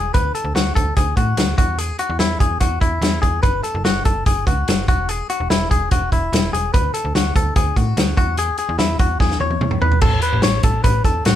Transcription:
Already playing: E1 G#4
0.14 D2 B4, kick, closed hi-hat
0.35 A4, closed hi-hat
0.44 D2
0.55 D2 F#4, snare, closed hi-hat
0.75 D2 A4, kick, closed hi-hat
0.97 D2 G#4, kick, closed hi-hat
1.17 A2 F#4, kick, closed hi-hat
1.37 D2, snare, closed hi-hat
1.58 E2 F#4, kick, closed hi-hat
1.79 G#4, closed hi-hat
1.99 F#4, closed hi-hat
2.10 E2
2.19 E2 E4, snare, closed hi-hat
2.40 E2 G#4, kick, closed hi-hat
2.60 E2 F#4, kick, closed hi-hat
2.81 E2 E4, kick, closed hi-hat
3.01 E2, snare, closed hi-hat
3.22 E2 G#4, kick, closed hi-hat
3.43 F#1 B4, kick, closed hi-hat
3.63 A4, closed hi-hat
3.75 F#1
3.85 F#1 F#4, snare, closed hi-hat
4.05 F#1 A4, kick, closed hi-hat
4.26 F#1 G#4, kick, closed hi-hat
4.47 C#2 F#4, kick, closed hi-hat
4.68 F#1, snare, closed hi-hat
4.88 E1 F#4, kick, closed hi-hat
5.09 G#4, closed hi-hat
5.30 F#4, closed hi-hat
5.40 E1
5.50 E1 E4, snare, closed hi-hat
5.71 E1 G#4, kick, closed hi-hat
5.91 E1 F#4, kick, closed hi-hat
6.12 E1 E4, kick, closed hi-hat
6.33 E1, snare, closed hi-hat
6.53 E1 G#4, closed hi-hat
6.74 D2 B4, kick, closed hi-hat
6.94 A4, closed hi-hat
7.05 D2
7.15 D2 F#4, snare, closed hi-hat
7.36 D2 A4, kick, closed hi-hat
7.56 D2 G#4, kick, closed hi-hat
7.76 A2 F#4, kick, closed hi-hat
7.97 D2, snare, closed hi-hat
8.17 E2 F#4, kick, closed hi-hat
8.37 G#4, closed hi-hat
8.58 G#4, closed hi-hat
8.69 E2
8.79 E2 E4, snare, closed hi-hat
8.99 E2 F#4, kick, closed hi-hat
9.20 E2 G#4, kick, snare
9.31 snare
9.40 E2 C#5, high tom
9.51 high tom
9.61 E2, mid tom
9.71 mid tom
9.81 E2 B4, floor tom
9.92 floor tom
10.01 A1 A4, kick, crash
10.22 B4, closed hi-hat
10.33 A1
10.42 A1 C#5, snare, closed hi-hat
10.63 A1 A4, kick, closed hi-hat
10.84 A1 B4, kick, closed hi-hat
11.04 E2 A4, kick, closed hi-hat
11.25 A1 F#4, snare, closed hi-hat

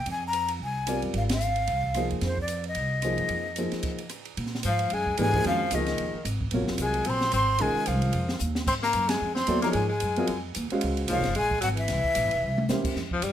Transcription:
0.06 F2, ride
0.11 G#5
0.27 A#5
0.33 hi-hat pedal, ride
0.48 ride
0.60 C2 G#5
0.87 G3 C4 F4 A#4 D5, cross-stick, hi-hat pedal, ride
1.02 F#2, ride
1.14 G#1 F5, ride
1.29 F5, snare, ride
1.40 hi-hat pedal
1.56 ride
1.67 C2, ride
1.84 kick
1.94 F3 A#3 D#4 G#4 C5, cross-stick, hi-hat pedal, ride
2.10 D#2, ride
2.21 F2 C5, snare, ride
2.38 D5, kick
2.48 hi-hat pedal, ride
2.64 ride
2.68 D#5
2.75 C2, ride
3.02 F3 A#3 D#4 G#4 C5, cross-stick, hi-hat pedal, ride
3.18 F#2, ride
3.29 F2, ride
3.56 F3 A#3 D#4 G#4 C5, hi-hat pedal, ride
3.72 muted upright bass stroke, snare, ride
3.83 kick, crash, ride
3.98 ride
4.09 cross-stick, hi-hat pedal, ride
4.25 ride
4.37 A#2, ride
4.46 snare
4.55 snare
4.63 G#2 F3, hi-hat pedal, ride
4.68 F5
4.79 ride
4.90 F#2 G#3 G#5, ride
5.07 kick
5.17 G#2 E3 G#3 A3 D4 G4 B4 G#5, hi-hat pedal, ride
5.34 F3 A#3 D#4 G#4 C5, kick, ride
5.44 F2 D#3 F3 G#3 C#4 F#4 A#4 F5, ride
5.71 C#2 D#3 F3 A#3 D#4 G#4 D#5, hi-hat pedal, ride
5.75 D#5
5.86 snare, ride
5.98 D#2, ride
6.14 muted upright bass stroke
6.25 G#1, hi-hat pedal, ride
6.41 kick
6.51 A#1 C3 F#3 F4 A#4 C#5, ride
6.61 G#1
6.68 F1, snare
6.78 C2 G#3, hi-hat pedal, ride
6.83 G#5
6.94 ride
7.05 A#1 C4, ride
7.10 C6
7.21 snare
7.32 G#1 C4 C6, hi-hat pedal, ride
7.58 A#1 D#3 G#3 C#4 F4 A#4 G#5, ride
7.75 muted upright bass stroke
7.85 C2 F3 F5, hi-hat pedal, ride
8.02 ride
8.13 F2, ride
8.29 snare
8.39 D#2, hi-hat pedal
8.55 snare
8.67 G#2 C4 C6, kick, crash
8.83 A#3 A#5, snare
8.93 F#2, hi-hat pedal, ride
9.08 G#3 G#5, snare, ride
9.21 F2
9.35 C4 C6, snare
9.47 D#2 F#3 B3 E4 A4 D5, hi-hat pedal, ride
9.62 F3 A#3 D#4 G#4 C#5 A#5, snare, ride
9.71 G#2 G#3 G#5, ride
9.89 G#3 G#5
10.00 F#2, hi-hat pedal, ride
10.16 F#3 C4 F4 A#4 D#5, ride
10.27 F2, ride
10.55 D#2, hi-hat pedal, ride
10.70 G#3 C#4 F#4 C5 F5, muted upright bass stroke, ride
10.81 C#2, ride
10.97 ride
11.08 C2 F3 A#3 D#4 G#4 C#5 F5, hi-hat pedal, ride
11.19 G#1
11.24 F#1, snare, ride
11.35 A#1 G#3 G#5, ride
11.51 kick
11.61 G#1 F#3 F#5, hi-hat pedal, ride
11.75 E3 E5, ride
11.88 C2, snare, ride
12.04 kick
12.15 A#1, hi-hat pedal, ride
12.25 G1
12.31 E1, ride
12.42 C2
12.58 high tom
12.69 E2 A#3 C#4 E4 G4 C5, snare, hi-hat pedal
12.84 kick, crash
12.96 F2, snare
13.11 F3, kick
13.22 G2 G3, hi-hat pedal, ride

